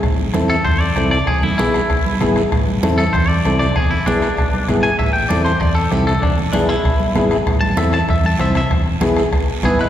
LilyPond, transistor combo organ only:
\new Staff \with { instrumentName = "Transistor combo organ" } { \time 4/4 \key a \minor \tempo 4 = 194 r4 <c' e' a'>8 r4. <c' e' a'>8 r8 | r4 <b e' gis'>8 r4. <b e' gis'>8 r8 | r4 <c' e' a'>8 r4. <c' e' a'>8 r8 | r4 <b e' gis'>8 r4. <b e' gis'>8 r8 |
r4 <c' e' a'>8 r4. <c' e' a'>8 r8 | r4 <b e' gis'>8 r4. <b e' gis'>8 r8 | r4 <c' e' a'>8 r4. <c' e' c''>8 r8 | r4 <b e' gis'>8 r4. <b e' b'>8 r8 | }